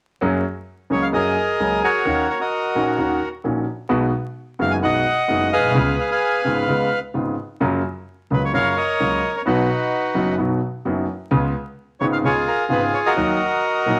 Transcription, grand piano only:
0.21 0.41 F#2 medium
0.21 0.41 F#3 medium
0.21 0.41 A#3 soft
0.21 0.41 C#4 medium
0.21 0.42 G#4 medium
0.90 1.10 C#2 soft
0.90 1.10 C#3 soft
0.90 1.10 F#3 soft
0.90 1.10 A#3 soft
0.90 1.10 C#4 soft
0.90 1.10 G#4 soft
1.13 1.33 F#2 soft
1.13 1.33 F#3 soft
1.13 1.33 A#3 soft
1.13 1.33 C#4 soft
1.13 1.33 G#4 soft
1.60 1.79 C#2 soft
1.60 1.79 C#3 soft
1.60 1.79 F#3 soft
1.60 1.79 A#3 soft
1.60 1.79 C#4 soft
1.60 1.80 G#4 soft
2.05 2.25 D#2 medium
2.05 2.25 D#3 medium
2.05 2.25 A#3 medium
2.05 2.25 C#4 medium
2.05 2.26 F#4 medium
2.75 2.95 A#1 soft
2.75 2.95 A#2 soft
2.75 2.95 D#3 soft
2.75 2.95 A#3 soft
2.75 2.95 C#4 soft
2.75 2.95 F#4 soft
2.98 3.17 D#2 soft
2.98 3.18 D#3 medium
2.98 3.17 A#3 soft
2.98 3.18 C#4 soft
2.98 3.18 F#4 soft
3.44 3.64 A#1 soft
3.44 3.64 A#2 soft
3.44 3.63 D#3 soft
3.44 3.64 A#3 soft
3.44 3.64 C#4 soft
3.44 3.64 F#4 soft
3.89 4.09 B1 medium
3.89 4.09 B2 medium
3.89 4.09 D#3 medium
3.89 4.09 G#3 medium
3.89 4.09 B3 medium
3.89 4.09 F#4 medium
4.59 4.79 F#1 medium
4.59 4.79 F#2 medium
4.59 4.79 D#3 soft
4.59 4.79 G#3 soft
4.59 4.79 B3 soft
4.59 4.79 F#4 soft
4.82 5.02 B1 soft
4.82 5.02 B2 soft
4.82 5.02 D#3 soft
4.82 5.02 G#3 soft
4.82 5.02 B3 soft
4.82 5.02 F#4 soft
5.28 5.48 F#1 soft
5.28 5.48 F#2 soft
5.28 5.48 D#3 soft
5.28 5.48 G#3 soft
5.28 5.48 B3 soft
5.28 5.48 F#4 soft
5.58 5.64 A#1 soft
5.64 5.70 B1 medium
5.69 5.75 C2 medium
5.74 5.94 C#2 medium
5.74 5.94 C#3 medium
5.74 5.94 G#3 medium
5.74 5.94 B3 medium
5.74 5.94 F4 medium
6.44 6.64 G#1 medium
6.44 6.64 G#2 soft
6.44 6.64 C#3 soft
6.44 6.64 G#3 soft
6.44 6.64 B3 soft
6.44 6.64 F4 soft
6.68 6.88 C#2 soft
6.68 6.88 C#3 soft
6.68 6.87 G#3 soft
6.68 6.88 B3 soft
6.68 6.88 F4 soft
7.14 7.34 G#1 soft
7.14 7.34 G#2 soft
7.14 7.34 C#3 soft
7.14 7.34 G#3 soft
7.14 7.34 B3 soft
7.14 7.34 F4 soft
7.60 7.80 F#2 medium
7.60 7.80 C#3 medium
7.60 7.80 F#3 medium
7.60 7.80 A#3 medium
7.60 7.80 F4 medium
8.31 8.50 C#2 soft
8.31 8.50 C#3 soft
8.31 8.50 F#3 soft
8.31 8.50 A#3 soft
8.31 8.50 F4 soft
8.53 8.73 F#2 soft
8.53 8.73 C#3 soft
8.53 8.73 F#3 soft
8.53 8.73 A#3 soft
8.53 8.74 F4 soft
9.00 9.20 C#2 soft
9.00 9.20 C#3 soft
9.00 9.19 F#3 soft
9.00 9.20 A#3 soft
9.00 9.20 F4 soft
9.46 9.66 B1 medium
9.46 9.66 B2 medium
9.46 9.65 D#3 medium
9.46 9.65 F#3 medium
9.46 9.66 B3 medium
9.46 9.66 F#4 medium
10.14 10.34 F#1 medium
10.14 10.35 F#2 medium
10.14 10.34 D#3 soft
10.14 10.34 F#3 soft
10.14 10.35 B3 soft
10.14 10.35 F#4 soft
10.38 10.58 B1 soft
10.38 10.58 B2 soft
10.38 10.58 D#3 soft
10.38 10.58 F#3 soft
10.38 10.58 B3 soft
10.38 10.58 F#4 soft
10.85 11.05 F#1 soft
10.85 11.05 F#2 soft
10.85 11.04 D#3 soft
10.85 11.04 F#3 soft
10.85 11.05 B3 soft
10.85 11.04 F#4 soft
11.31 11.50 C#2 medium
11.31 11.51 C#3 medium
11.31 11.51 G#3 medium
11.31 11.51 B3 medium
11.31 11.51 F4 medium
12.01 12.20 G#1 medium
12.01 12.20 G#2 medium
12.01 12.20 C#3 soft
12.01 12.20 G#3 soft
12.01 12.20 B3 soft
12.01 12.21 F4 soft
12.23 12.43 C#2 medium
12.23 12.43 C#3 soft
12.23 12.43 G#3 soft
12.23 12.43 B3 soft
12.23 12.43 F4 soft
12.69 12.89 G#1 soft
12.69 12.89 G#2 soft
12.69 12.89 C#3 soft
12.69 12.89 G#3 soft
12.69 12.89 B3 soft
12.69 12.89 F4 soft
13.16 13.36 D#2 medium
13.16 13.36 D#3 medium
13.16 13.36 F#3 medium
13.16 13.36 A#3 medium
13.16 13.36 F#4 medium
13.86 14.00 A#1 soft
13.86 14.00 A#2 soft
13.86 14.00 D#3 soft
13.86 14.00 F#3 soft
13.86 14.00 A#3 soft
13.86 14.00 F#4 soft

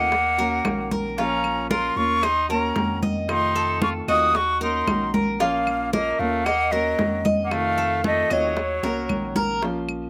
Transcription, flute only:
0.00 0.92 F#5 loud
1.19 1.67 A#5 medium
1.71 1.99 C6 loud
1.97 2.26 C#6 loud
2.24 2.50 C6 loud
2.50 2.99 A#5 medium
3.30 3.79 C6 medium
3.83 3.89 C#6 medium
4.10 4.38 D#6 loud
4.36 4.62 C#6 medium
4.63 5.11 C6 medium
5.42 5.90 F5 medium
5.94 6.21 D#5 medium
6.20 6.46 F5 medium
6.45 6.73 F#5 loud
6.72 7.25 D#5 medium
7.45 7.53 F#5 medium
7.52 8.04 F5 loud
8.07 8.34 D#5 medium
8.33 9.37 C#5 medium

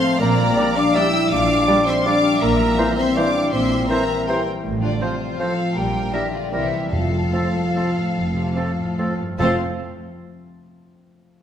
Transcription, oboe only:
0.57 0.70 D5 medium
0.95 1.08 D5 medium
1.68 1.81 D5 medium
2.06 2.19 D5 medium
2.78 2.92 C5 medium
3.17 3.30 C5 medium
3.90 4.04 C5 medium
4.29 4.42 C5 medium
5.01 5.15 C5 medium
5.40 5.53 C5 soft
6.13 6.27 A#4 soft
6.53 6.67 A#4 soft
7.34 7.49 A4 soft
7.76 7.90 A4 soft
8.56 8.72 A4 soft
8.99 9.14 A4 soft
9.39 9.55 A4 medium

